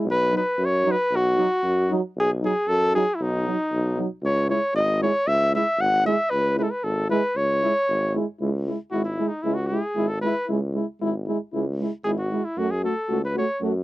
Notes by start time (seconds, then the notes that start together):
0.05 B1
0.11 B4
0.31 F#3 D#4
0.37 B4
0.58 F#2
0.65 C#5
0.85 F#3 D#4
0.91 B4
1.11 B1
1.16 F#4
1.37 F#3 D#4
1.63 F#2
1.89 F#3 D#4
2.16 B1 G#4
2.41 F#3 D#4 G#4
2.68 F#2 A4
2.93 F#3 D#4 G#4
3.15 E4
3.20 B1 D#4
3.46 F#3 D#4
3.72 B1
3.97 F#3 D#4
4.23 C#2 C#5
4.49 G#3 E4 C#5
4.74 G#1 D#5
5.01 G#3 E4 C#5
5.27 C#2 E5
5.54 G#3 E4 E5
5.79 G#1 F#5
6.05 G#3 E4 E5
6.30 C#2 B4
6.56 G#3 E4 B4
6.63 A4
6.71 B4
6.83 G#1 A4
7.10 G#3 E4 B4
7.36 C#2 C#5
7.62 G#3 E4
7.89 G#1
8.15 G#3 E4
8.40 C#2 G#3 E4
8.66 G#3 E4
8.91 G#1 G#3 E4 F#4
9.05 E4
9.18 G#3 E4
9.28 D#4
9.42 C#2 G#3 E4
9.54 F#4
9.67 G#3 G#4
9.71 E4
9.96 G#1 G#3 E4
10.08 A4
10.21 G#3 E4 B4
10.47 C#2 G#3 E4
10.74 G#3 E4
11.01 G#1 G#3 E4
11.27 G#3 E4
11.53 C#2 G#3 E4
11.80 G#3 E4
12.04 G#1 G#3 E4 G#4
12.18 F#4
12.30 G#3 E4
12.45 E4
12.57 F#2 A3 F#4
12.71 G#4
12.83 A3 F#4 A4
13.09 C#2 A3 F#4
13.25 B4
13.34 A3 F#4 C#5
13.61 F#2 A3 F#4